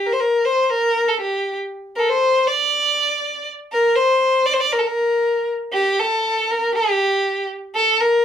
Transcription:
0.07 A#4
0.13 C5
0.20 A#4
0.45 C5
0.63 C5
0.70 A#4
1.09 A4
1.21 G4
1.96 A4 A#4
2.03 A#4
2.09 C5
2.48 D5
3.73 A#4
3.96 C5
4.46 D5
4.54 C5
4.60 D5
4.73 A#4
4.79 A4
4.87 A#4
5.73 G4
6.00 A4
6.51 A#4
6.75 G4
7.76 A4
8.01 A#4

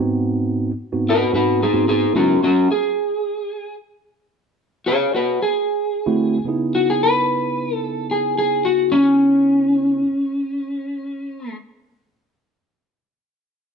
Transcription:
0.00 G#2 B3 C4 D#4 F#4
0.92 G#2 B3 C4 D#4 F#4
1.09 F#4 B4
1.33 G#2 B3 C4 D#4 F#4 B4
1.63 D#4 G#4
1.73 G#2 B3 C4 D#4 F#4
1.88 D#4 G#4
2.14 C#3 G#3 B3 C#4 D#4 E4 F#4
2.44 C#4 F#4
2.72 G#4
4.86 G#4 C#5
5.14 F#4 B4
5.42 G#4
6.06 D3 A3 C4 E4 F#4
6.45 C#3 B3 D#4 E4 G#4
6.75 F#4
6.90 G#4
7.03 B4
7.75 A4
8.11 G#4
8.38 G#4
8.65 F#4
8.92 C#4

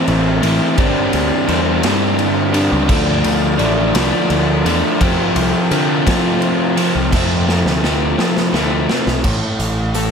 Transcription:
Already playing: A2 E3 A3 C4 E4
0.08 A1, ride
0.41 A1 A2 E3 A3 C4 E4, ride
0.77 G1 G2 D3 G3 C4 D4, kick, ride
1.13 D2, ride
1.47 E2 G2 D3 G3 C4 D4, ride
1.82 G2 D3 G3 C4 D4, snare, ride
2.19 ride
2.52 G2 D3 G3 C4 D4, ride
2.72 C#2
2.87 D2 D3 F3 A3 D4, kick, crash
3.24 D2, ride
3.58 A1 D3 F3 A3 D4, ride
3.94 C2 D3 F3 A3 D4, snare, ride
4.30 D2, ride
4.65 E2 D3 F3 A3 D4, ride
5.00 F2 C3 F3 A3 C4, kick, ride
5.36 C2, ride
5.71 F2 C3 D3 F3 A3 C4, ride
6.05 F2 C3 F3 A3 C4, kick, snare, ride
6.42 ride
6.77 F2 C3 F3 A3 C4, ride
6.95 C2
7.12 F2 C3 F3 A3 C4, kick, snare, crash
7.47 F3 A3 C4, snare
7.65 D2, snare
7.83 C3 F3 A3 C4, snare
8.18 F3 A3 C4, snare
8.37 snare
8.53 D2 C3 F3 A3 C4, snare
8.88 F3 A3 C4, snare
9.06 B1, snare
9.24 A1 A2, kick, crash
9.59 A1, closed hi-hat
9.94 A3, closed hi-hat

